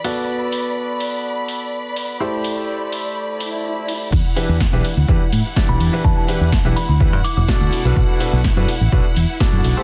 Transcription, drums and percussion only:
0.04 open hi-hat medium
0.52 open hi-hat medium
1.00 open hi-hat medium
1.48 open hi-hat medium
1.96 open hi-hat medium
2.44 open hi-hat loud
2.92 open hi-hat medium
3.40 open hi-hat medium
3.88 open hi-hat medium
4.12 kick loud
4.12 crash loud
4.12 shaker soft
4.36 open hi-hat loud
4.36 shaker medium
4.49 shaker soft
4.60 kick loud
4.60 snare loud
4.60 shaker soft
4.73 shaker soft
4.84 open hi-hat medium
4.84 shaker medium
4.97 shaker soft
5.08 kick loud
5.08 shaker soft
5.32 open hi-hat loud
5.32 shaker medium
5.45 shaker soft
5.56 kick loud
5.56 snare loud
5.56 shaker soft
5.80 open hi-hat loud
5.80 shaker medium
5.93 shaker soft
6.04 kick loud
6.04 shaker soft
6.28 open hi-hat loud
6.28 shaker medium
6.41 shaker soft
6.52 kick loud
6.52 snare loud
6.52 shaker soft
6.65 shaker soft
6.76 open hi-hat loud
6.76 shaker medium
6.89 shaker soft
7.00 kick loud
7.00 shaker soft
7.24 open hi-hat loud
7.24 shaker medium
7.37 shaker soft
7.48 kick loud
7.48 snare loud
7.48 shaker soft
7.72 open hi-hat loud
7.72 shaker medium
7.85 shaker soft
7.96 kick loud
7.96 shaker soft
8.20 open hi-hat loud
8.20 shaker medium
8.33 shaker soft
8.44 kick loud
8.44 snare loud
8.44 shaker soft
8.57 shaker soft
8.68 open hi-hat loud
8.68 shaker medium
8.81 shaker soft
8.92 kick loud
8.92 shaker soft
9.16 open hi-hat loud
9.16 shaker medium
9.29 shaker soft
9.40 kick loud
9.40 snare loud
9.40 shaker soft
9.64 open hi-hat loud
9.64 shaker medium
9.77 shaker soft

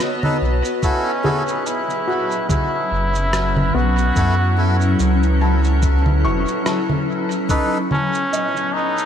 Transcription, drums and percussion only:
0.00 cross-stick loud
0.00 shaker medium
0.23 low conga medium
0.65 shaker soft
0.83 kick loud
0.83 shaker medium
1.25 low conga medium
1.48 shaker soft
1.66 shaker medium
1.90 shaker soft
2.32 shaker soft
2.49 kick loud
2.49 low conga medium
2.49 shaker medium
3.15 shaker soft
3.33 cross-stick medium
3.33 shaker soft
3.57 low conga medium
3.98 shaker soft
4.16 kick loud
4.16 shaker soft
4.81 shaker soft
4.99 shaker medium
5.23 shaker soft
5.64 shaker soft
5.82 kick loud
5.82 shaker medium
6.06 low conga medium
6.48 shaker soft
6.66 cross-stick medium
6.66 shaker soft
6.89 low conga medium
7.31 shaker soft
7.49 kick loud
7.49 shaker medium
7.91 low conga medium
8.14 shaker soft
8.33 shaker medium
8.56 shaker soft
8.98 shaker soft

